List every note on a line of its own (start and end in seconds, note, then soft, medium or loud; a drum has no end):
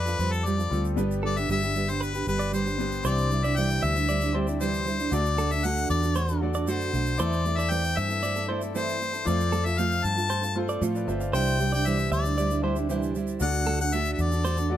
0.00 0.15 F2 loud
0.00 0.70 G3 medium
0.00 0.70 C4 medium
0.00 0.71 F4 medium
0.00 0.72 A4 loud
0.00 0.34 B4 medium
0.00 0.19 D5 medium
0.06 0.19 C4 soft
0.06 0.20 F4 medium
0.06 0.19 A4 medium
0.06 shaker medium
0.19 0.67 F2 loud
0.19 0.45 G3 medium
0.19 0.45 C4 medium
0.19 0.45 F4 medium
0.19 0.45 A4 medium
0.19 0.32 C5 medium
0.19 shaker medium
0.33 0.47 A4 medium
0.33 shaker soft
0.45 0.58 F3 medium
0.45 0.58 G3 medium
0.45 0.58 C4 medium
0.45 0.58 F4 medium
0.45 0.56 A4 medium
0.45 0.84 D5 medium
0.45 shaker medium
0.58 0.71 C4 soft
0.58 0.72 F4 medium
0.58 0.71 A4 medium
0.58 shaker soft
0.70 0.95 D2 medium
0.70 0.90 G3 medium
0.70 0.96 G3 medium
0.70 0.91 C4 medium
0.70 0.97 C4 medium
0.70 0.91 F4 medium
0.70 0.98 F4 medium
0.70 0.91 A4 medium
0.70 0.98 A4 medium
0.70 shaker soft
0.85 shaker soft
0.96 1.45 G1 loud
0.96 1.76 G3 medium
0.96 1.22 G3 medium
0.96 1.77 B3 medium
0.96 1.77 D4 medium
0.96 1.23 D4 medium
0.96 1.24 G4 medium
0.96 1.77 B4 loud
0.96 1.24 B4 medium
0.96 shaker medium
1.11 shaker soft
1.23 1.36 G3 medium
1.23 1.36 D4 medium
1.23 1.37 G4 medium
1.23 1.35 A4 medium
1.23 1.35 B4 medium
1.23 1.39 D5 medium
1.36 1.49 D4 soft
1.36 1.49 G4 soft
1.36 1.49 B4 medium
1.36 1.50 E5 loud
1.36 shaker soft
1.49 2.23 G1 loud
1.49 1.62 G3 medium
1.49 1.63 D4 medium
1.49 1.62 G4 medium
1.49 1.61 B4 medium
1.49 1.91 E5 loud
1.49 shaker medium
1.62 1.75 D4 soft
1.62 1.76 G4 soft
1.62 1.75 B4 medium
1.62 shaker soft
1.75 1.88 G3 medium
1.75 1.88 D4 medium
1.75 1.88 G4 medium
1.75 1.86 B4 medium
1.75 shaker soft
1.87 2.15 D4 soft
1.87 2.14 G4 soft
1.87 2.12 B4 medium
1.87 2.04 C5 medium
1.87 shaker medium
2.01 2.13 B4 medium
2.01 2.28 B4 medium
2.01 shaker medium
2.14 2.26 D4 soft
2.14 2.27 G4 medium
2.14 2.27 B4 medium
2.14 shaker medium
2.26 3.01 G1 medium
2.26 2.51 G3 medium
2.26 2.52 D4 medium
2.26 2.52 G4 medium
2.26 2.52 B4 medium
2.26 2.53 B4 medium
2.26 shaker medium
2.39 2.52 D5 medium
2.39 shaker soft
2.52 2.65 G3 medium
2.52 2.66 D4 medium
2.52 2.65 G4 medium
2.52 2.64 B4 medium
2.52 3.02 C5 medium
2.52 shaker medium
2.65 2.78 D4 soft
2.65 2.79 G4 soft
2.65 2.78 B4 medium
2.65 shaker soft
2.78 3.04 G3 medium
2.78 2.98 G3 medium
2.78 2.99 B3 medium
2.78 3.05 D4 medium
2.78 2.99 D4 medium
2.78 3.05 G4 medium
2.78 2.99 B4 medium
2.78 3.05 B4 medium
2.78 shaker soft
2.92 shaker soft
3.03 3.79 C2 loud
3.03 3.30 C3 medium
3.03 3.31 E3 medium
3.03 3.29 G3 medium
3.03 3.84 C4 medium
3.03 3.84 D4 medium
3.03 3.30 D4 medium
3.03 3.84 E4 medium
3.03 3.31 E4 medium
3.03 3.85 G4 medium
3.03 3.29 C5 loud
3.03 3.31 C5 medium
3.03 3.46 D5 loud
3.03 3.85 D5 medium
3.03 shaker medium
3.18 shaker medium
3.30 3.43 G3 medium
3.30 3.43 D4 medium
3.30 3.43 E4 medium
3.30 3.42 C5 medium
3.30 shaker medium
3.44 3.56 G3 soft
3.44 3.56 D4 soft
3.44 3.56 E4 medium
3.44 3.69 D5 medium
3.44 3.58 E5 loud
3.44 shaker medium
3.56 3.95 C3 medium
3.56 3.95 E3 medium
3.56 3.96 G3 medium
3.56 3.96 D4 medium
3.56 3.95 E4 medium
3.56 3.94 C5 medium
3.56 3.85 G5 loud
3.56 shaker medium
3.70 shaker medium
3.83 5.08 D2 loud
3.83 3.95 E5 medium
3.83 4.35 E5 loud
3.83 shaker soft
3.95 4.07 G3 soft
3.95 4.08 D4 soft
3.95 4.09 E4 medium
3.95 4.08 C5 medium
3.95 shaker medium
4.08 4.21 G3 medium
4.08 4.21 D4 medium
4.08 4.21 E4 medium
4.08 4.20 C5 medium
4.08 4.33 D5 medium
4.08 shaker medium
4.21 4.33 G3 soft
4.21 4.33 D4 medium
4.21 4.34 E4 medium
4.21 shaker medium
4.33 4.47 G3 medium
4.33 4.94 C4 medium
4.33 4.94 D4 medium
4.33 4.47 D4 medium
4.33 4.94 E4 medium
4.33 4.46 E4 medium
4.33 4.94 G4 medium
4.33 4.47 C5 medium
4.33 4.46 C5 medium
4.33 4.95 D5 medium
4.47 4.59 G3 soft
4.47 4.60 D4 soft
4.47 4.60 E4 soft
4.47 4.60 C5 medium
4.47 shaker medium
4.60 4.86 C3 medium
4.60 4.86 E3 medium
4.60 4.84 G3 medium
4.60 4.85 D4 medium
4.60 4.86 E4 medium
4.60 5.15 C5 medium
4.60 4.86 C5 loud
4.60 shaker medium
4.74 shaker soft
4.85 4.99 G3 medium
4.85 4.99 D4 medium
4.85 4.98 E4 medium
4.85 4.97 C5 medium
4.85 shaker soft
4.99 5.12 G3 soft
4.99 5.12 D4 soft
4.99 5.12 E4 soft
4.99 shaker medium
5.11 5.86 D2 loud
5.11 5.38 D3 medium
5.11 5.36 A3 medium
5.11 5.37 D4 medium
5.11 5.92 F#4 medium
5.11 5.38 F#4 medium
5.11 5.92 A4 medium
5.11 5.38 A4 medium
5.11 5.93 D5 medium
5.11 5.53 D5 loud
5.11 shaker medium
5.26 shaker medium
5.38 5.51 A3 medium
5.38 5.51 D4 medium
5.38 5.51 F#4 medium
5.38 5.51 A4 medium
5.38 5.49 A4 medium
5.38 shaker medium
5.50 5.64 D4 soft
5.50 5.64 F#4 soft
5.50 5.64 A4 medium
5.50 5.66 E5 loud
5.50 shaker soft
5.64 6.03 D3 medium
5.64 6.03 A3 medium
5.64 6.03 D4 medium
5.64 6.03 F#4 medium
5.64 6.01 A4 loud
5.64 5.89 F#5 loud
5.64 shaker medium
5.77 shaker medium
5.90 6.67 E2 loud
5.90 6.38 D5 loud
5.90 shaker medium
6.03 6.15 D4 soft
6.03 6.16 F#4 medium
6.03 6.16 A4 medium
6.03 shaker medium
6.15 6.29 A3 medium
6.15 6.29 D4 medium
6.15 6.29 F#4 medium
6.15 6.27 A4 medium
6.15 6.28 C5 medium
6.15 shaker medium
6.28 6.42 D4 medium
6.28 6.42 F#4 medium
6.28 6.42 A4 medium
6.28 shaker medium
6.41 6.55 A3 medium
6.41 6.55 D4 medium
6.41 7.01 F#4 medium
6.41 6.54 F#4 medium
6.41 7.02 A4 medium
6.41 6.53 A4 medium
6.41 7.02 D5 medium
6.54 6.66 D4 soft
6.54 6.67 F#4 medium
6.54 6.67 A4 medium
6.54 6.67 D5 medium
6.54 shaker medium
6.67 6.91 F#2 loud
6.67 6.93 D3 medium
6.67 6.92 A3 medium
6.67 6.92 D4 medium
6.67 6.93 F#4 loud
6.67 6.94 A4 loud
6.67 7.21 C5 medium
6.67 shaker medium
6.81 shaker soft
6.93 7.17 B1 medium
6.93 7.18 A3 medium
6.93 7.19 D4 medium
6.93 7.19 F#4 medium
6.93 7.19 A4 medium
6.93 shaker soft
7.06 shaker medium
7.18 7.93 E2 loud
7.18 7.45 E3 medium
7.18 7.44 A3 medium
7.18 7.45 C4 medium
7.18 7.98 E4 medium
7.18 7.46 E4 medium
7.18 7.99 A4 medium
7.18 7.46 A4 medium
7.18 7.99 C5 medium
7.18 7.44 C5 loud
7.18 7.59 D5 loud
7.18 shaker loud
7.33 shaker medium
7.45 7.58 A3 medium
7.45 7.59 C4 medium
7.45 7.57 E4 medium
7.45 7.56 A4 medium
7.45 shaker medium
7.57 7.70 C4 medium
7.57 7.71 E4 medium
7.57 7.71 A4 medium
7.57 7.83 D5 medium
7.57 7.72 E5 loud
7.57 shaker medium
7.70 8.10 E3 medium
7.70 8.10 A3 medium
7.70 8.10 C4 medium
7.70 8.09 E4 medium
7.70 8.08 A4 medium
7.70 7.99 G5 loud
7.70 shaker medium
7.84 shaker medium
7.97 9.23 G2 medium
7.97 8.09 E5 medium
7.97 8.49 E5 loud
7.97 shaker medium
8.09 8.22 C4 soft
8.09 8.23 E4 medium
8.09 8.23 A4 medium
8.09 shaker medium
8.23 8.36 A3 medium
8.23 8.36 C4 medium
8.23 8.36 E4 medium
8.23 8.35 A4 medium
8.23 8.48 D5 medium
8.23 shaker medium
8.36 8.49 C4 medium
8.36 8.50 E4 medium
8.36 8.49 A4 medium
8.36 shaker medium
8.48 8.62 A3 medium
8.48 8.62 C4 medium
8.48 9.08 E4 medium
8.48 8.61 E4 medium
8.48 9.09 A4 medium
8.48 8.60 A4 medium
8.48 8.61 C5 medium
8.48 9.09 D5 medium
8.61 8.74 C4 soft
8.61 8.74 E4 medium
8.61 8.75 A4 medium
8.61 shaker soft
8.74 9.01 E3 medium
8.74 8.99 A3 medium
8.74 9.00 C4 medium
8.74 9.01 E4 loud
8.74 9.01 A4 medium
8.74 9.28 C5 loud
8.74 shaker medium
8.89 shaker medium
9.00 9.14 A3 medium
9.00 9.14 C4 medium
9.00 9.13 E4 medium
9.00 9.12 A4 medium
9.00 shaker soft
9.13 9.26 C4 soft
9.13 9.27 E4 soft
9.13 9.26 A4 medium
9.13 shaker medium
9.25 10.01 F2 loud
9.25 9.53 F3 medium
9.25 9.51 A3 medium
9.25 9.51 C4 medium
9.25 10.06 F4 medium
9.25 9.52 F4 medium
9.25 10.07 A4 medium
9.25 9.53 A4 medium
9.25 10.07 C5 medium
9.25 9.67 D5 loud
9.25 shaker medium
9.41 shaker medium
9.52 9.65 A3 medium
9.52 9.66 C4 medium
9.52 9.65 F4 medium
9.52 9.65 A4 medium
9.52 9.64 A4 medium
9.52 shaker medium
9.65 9.78 C4 soft
9.65 9.78 F4 medium
9.65 9.79 A4 medium
9.65 9.80 E5 loud
9.65 shaker medium
9.78 10.17 F3 medium
9.78 10.18 A3 medium
9.78 10.18 C4 medium
9.78 10.17 F4 medium
9.78 10.16 A4 medium
9.78 10.06 F5 loud
9.78 shaker medium
9.92 shaker soft
10.04 10.78 G2 loud
10.04 10.56 A5 loud
10.04 shaker medium
10.17 10.29 C4 soft
10.17 10.29 F4 medium
10.17 10.30 A4 medium
10.17 shaker medium
10.29 10.43 A3 medium
10.29 10.43 C4 medium
10.29 10.42 F4 medium
10.29 10.40 A4 medium
10.29 10.43 C5 medium
10.29 shaker medium
10.42 10.55 C4 soft
10.42 10.56 F4 medium
10.42 10.56 A4 medium
10.42 shaker medium
10.55 10.69 A3 medium
10.55 10.69 C4 medium
10.55 11.16 F4 medium
10.55 10.68 F4 medium
10.55 11.16 A4 medium
10.55 10.67 A4 medium
10.55 10.83 C5 medium
10.68 10.81 C4 medium
10.68 10.81 F4 medium
10.68 10.81 A4 medium
10.68 10.82 D5 medium
10.68 shaker soft
10.81 11.06 A2 loud
10.81 11.08 F3 medium
10.81 11.06 A3 loud
10.81 11.07 C4 medium
10.81 11.08 F4 loud
10.81 11.08 A4 loud
10.81 shaker medium
10.95 11.08 B4 medium
10.95 11.07 D5 medium
10.95 shaker soft
11.07 11.32 G1 medium
11.07 11.34 A3 medium
11.07 11.34 C4 medium
11.07 11.34 F4 medium
11.07 11.35 A4 medium
11.07 11.21 C5 medium
11.07 11.20 E5 medium
11.07 shaker soft
11.20 11.46 D5 medium
11.20 11.45 F5 medium
11.20 shaker medium
11.33 12.08 C2 loud
11.33 11.60 C3 medium
11.33 11.60 E3 medium
11.33 11.58 G3 medium
11.33 12.13 D4 medium
11.33 11.59 D4 medium
11.33 12.14 E4 medium
11.33 11.60 E4 medium
11.33 12.14 G4 medium
11.33 11.58 C5 loud
11.33 12.14 C5 medium
11.33 11.60 C5 medium
11.33 12.14 E5 medium
11.33 11.71 G5 loud
11.33 shaker medium
11.47 shaker medium
11.59 11.73 G3 medium
11.59 11.73 D4 medium
11.59 11.72 E4 medium
11.59 11.71 C5 medium
11.59 shaker medium
11.72 11.85 G3 soft
11.72 11.85 D4 medium
11.72 11.86 E4 medium
11.72 11.86 C5 medium
11.72 11.97 D5 medium
11.72 11.88 G5 loud
11.72 shaker medium
11.86 12.25 C3 medium
11.86 12.25 E3 medium
11.86 12.25 G3 medium
11.86 12.25 D4 medium
11.86 12.24 E4 medium
11.86 12.23 C5 medium
11.86 12.12 E5 loud
11.86 shaker medium
11.98 shaker medium
12.11 13.37 D2 loud
12.11 12.61 D5 medium
12.11 12.24 E5 medium
12.11 shaker medium
12.24 12.36 G3 soft
12.24 12.37 D4 medium
12.24 12.38 E4 medium
12.24 12.38 C5 medium
12.24 shaker medium
12.38 12.51 G3 medium
12.38 12.50 D4 medium
12.38 12.50 E4 medium
12.38 12.49 C5 medium
12.38 12.62 D5 medium
12.38 shaker medium
12.50 12.61 G3 soft
12.50 12.63 D4 medium
12.50 12.63 E4 medium
12.50 12.63 C5 medium
12.50 shaker medium
12.62 12.76 G3 medium
12.62 13.23 D4 medium
12.62 12.76 D4 medium
12.62 13.23 E4 medium
12.62 12.75 E4 medium
12.62 13.23 G4 medium
12.62 13.23 C5 medium
12.62 12.76 C5 medium
12.62 12.75 C5 medium
12.62 13.24 E5 medium
12.76 12.88 G3 medium
12.76 12.89 D4 medium
12.76 12.89 E4 medium
12.76 12.89 C5 medium
12.76 shaker soft
12.89 13.15 C3 medium
12.89 13.15 E3 loud
12.89 13.14 G3 loud
12.89 13.15 D4 loud
12.89 13.16 E4 loud
12.89 13.16 C5 loud
12.89 shaker medium
13.03 shaker soft
13.15 13.41 G3 medium
13.15 13.42 D4 medium
13.15 13.42 E4 medium
13.15 13.42 C5 medium
13.15 shaker soft
13.27 shaker medium
13.40 14.15 D2 loud
13.40 13.67 D3 medium
13.40 13.66 A3 medium
13.40 13.67 D4 medium
13.40 14.20 F#4 medium
13.40 13.68 F#4 medium
13.40 14.21 A4 medium
13.40 13.68 A4 medium
13.40 14.21 D5 medium
13.40 13.78 F#5 loud
13.40 shaker medium
13.53 shaker medium
13.66 13.80 A3 medium
13.66 13.81 D4 medium
13.66 13.80 F#4 medium
13.66 13.79 A4 medium
13.66 shaker medium
13.80 13.93 D4 soft
13.80 13.93 F#4 medium
13.80 13.93 A4 medium
13.80 13.96 F#5 loud
13.80 shaker medium
13.92 14.32 D3 medium
13.92 14.32 A3 medium
13.92 14.32 D4 medium
13.92 14.32 F#4 medium
13.92 14.30 A4 medium
13.92 14.13 E5 loud
13.92 shaker medium
14.05 shaker medium
14.14 14.22 E5 medium
14.18 14.77 E2 medium
14.18 14.72 D5 loud
14.18 shaker medium
14.31 14.44 D4 soft
14.31 14.45 F#4 medium
14.31 14.45 A4 medium
14.31 shaker medium
14.44 14.57 A3 medium
14.44 14.58 D4 medium
14.44 14.57 F#4 medium
14.44 14.56 A4 medium
14.44 14.57 C5 medium
14.44 shaker medium
14.57 14.70 D4 soft
14.57 14.71 F#4 medium
14.57 14.70 A4 medium
14.57 shaker medium
14.70 14.77 A3 medium
14.70 14.77 D4 medium
14.70 14.77 F#4 medium
14.70 14.77 A4 medium
14.70 14.77 D5 medium